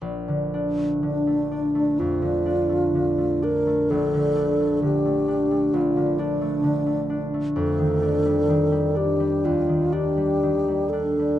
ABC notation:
X:1
M:4/4
L:1/16
Q:1/4=63
K:Bb
V:1 name="Alto flute"
z4 D4 F6 B2 | A4 G4 F2 D4 z2 | A6 G2 F2 G4 A2 |]
V:2 name="Harp" clef=bass
B,,, D, D A, D, A, D A, F,, D, D A, D, A, D A, | B,,, D, D A, D, A, D A, B,,, D, D A, D, A, D A, | F,, E, D G, E, G, D G, E,, E, D G, E, G, D G, |]